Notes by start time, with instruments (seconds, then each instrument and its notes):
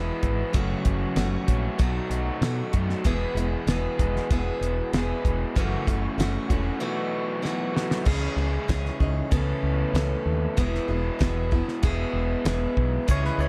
Already playing: fretless electric bass E1, overdriven electric guitar E2 B2 E3 G#3 B3 E4, steel-string acoustic guitar E3 B3 E4 G#4
0.23 fretless electric bass G#1, kick, closed hi-hat
0.52 fretless electric bass F#1, overdriven electric guitar F#2 C#3 F#3 A3 C#4 F#4, steel-string acoustic guitar F#2 C#3 E3 A3 C#4 F#4, kick, closed hi-hat
0.85 fretless electric bass F#1, kick, closed hi-hat
1.16 fretless electric bass F#1, steel-string acoustic guitar E3 A3 C#4 F#4, snare, closed hi-hat
1.46 fretless electric bass A#1, overdriven electric guitar F#2 C#3 F#3 A3 C#4 F#4, kick, closed hi-hat
1.78 fretless electric bass B1, overdriven electric guitar B2 F#3 A3 D#4 F#4, steel-string acoustic guitar B2 F#3 A3 F#4, kick, closed hi-hat
2.10 fretless electric bass B1, closed hi-hat
2.41 fretless electric bass B2, steel-string acoustic guitar F#3 A3 F#4, snare, closed hi-hat
2.72 fretless electric bass F#2, overdriven electric guitar F#3 A3 D#4 F#4, kick, closed hi-hat
2.76 overdriven electric guitar B2
2.90 snare
3.04 fretless electric bass E1, overdriven electric guitar E2 B2 E3 G#3 B3 G#4, steel-string acoustic guitar E3 B3 E4 G#4, kick, closed hi-hat
3.35 fretless electric bass E1, steel-string acoustic guitar B3 E4 G#4, closed hi-hat
3.67 fretless electric bass E1, steel-string acoustic guitar E3 B3 E4 G#4, snare, closed hi-hat
3.97 fretless electric bass E1, overdriven electric guitar E2 B2 E3 G#3 B3 G#4, kick, closed hi-hat
4.16 snare
4.30 fretless electric bass E1, steel-string acoustic guitar E3 B3 E4 G#4, kick, closed hi-hat
4.61 fretless electric bass E1, closed hi-hat
4.92 fretless electric bass E1, overdriven electric guitar E2 B2 E3 G#3 B3 G#4, steel-string acoustic guitar E3 B3 E4 G#4, snare, closed hi-hat
5.25 fretless electric bass E1, kick, closed hi-hat
5.55 fretless electric bass F#1, overdriven electric guitar F#2 C#3 F#3 A3 C#4 F#4, steel-string acoustic guitar F#2 C#3 E3 A3 C#4 F#4, kick, closed hi-hat
5.87 fretless electric bass F#1, steel-string acoustic guitar E3 A3 C#4 F#4, kick, closed hi-hat
6.17 fretless electric bass F#1, steel-string acoustic guitar E3 A3 C#4 F#4, snare, closed hi-hat
6.49 fretless electric bass E1, overdriven electric guitar F#2 C#3 F#3 A3 C#4 F#4, steel-string acoustic guitar E3 A3 C#4 F#4, kick, closed hi-hat
6.80 overdriven electric guitar B2 F#3 A3 D#4 F#4, steel-string acoustic guitar B2 E3 A3 F#4
7.42 steel-string acoustic guitar E3 A3 F#4, snare
7.73 overdriven electric guitar B2 F#3 A3 D#4 F#4, snare
7.91 snare
8.05 fretless electric bass C#2, overdriven electric guitar C#3 E3 G#3 C#4, steel-string acoustic guitar C#3 E3 C#4 G#4, kick, crash
8.09 overdriven electric guitar E4
8.36 fretless electric bass C#2, steel-string acoustic guitar C#4 G#4
8.68 fretless electric bass C#2, steel-string acoustic guitar E3 C#4 G#4, kick, snare, closed hi-hat
8.85 snare
9.00 fretless electric bass C#2, steel-string acoustic guitar C#4 D#4 G#4, kick
9.31 fretless electric bass C#2, overdriven electric guitar C#3 E3 A3 C#4 E4, steel-string acoustic guitar C#3 E3 B3 C#4 A4, kick, closed hi-hat
9.63 fretless electric bass C#2
9.93 fretless electric bass C#2, steel-string acoustic guitar B3 C#4 A4, snare, closed hi-hat
10.26 fretless electric bass D#2
10.56 fretless electric bass E1, overdriven electric guitar E2 B2 E3 G#3 B3 E4, steel-string acoustic guitar E3 B3 E4 G#4, kick, closed hi-hat
10.75 snare
10.88 fretless electric bass E1, steel-string acoustic guitar B3 E4 G#4
11.19 fretless electric bass E1, steel-string acoustic guitar E3 B3 E4 G#4, kick, snare, closed hi-hat
11.51 steel-string acoustic guitar B3 E4 G#4, kick
11.68 snare
11.83 fretless electric bass E1, overdriven electric guitar E2 B2 E3 G#3 B3 E4, steel-string acoustic guitar E3 B3 E4 G#4, kick, closed hi-hat
12.13 fretless electric bass E1
12.45 fretless electric bass E1, steel-string acoustic guitar E3 B3 E4 G#4, snare, closed hi-hat
12.77 fretless electric bass B1, kick
13.07 fretless electric bass C#2, overdriven electric guitar C#3 E3 G#3 C#4 E4, steel-string acoustic guitar C#3 E3 C#4 G#4, string section E3 G#4 C#5 D#5, kick, closed hi-hat, shaker
13.11 clean electric guitar C#5
13.25 clean electric guitar B4, snare
13.38 fretless electric bass C#2, steel-string acoustic guitar C#4 G#4, clean electric guitar C#5, shaker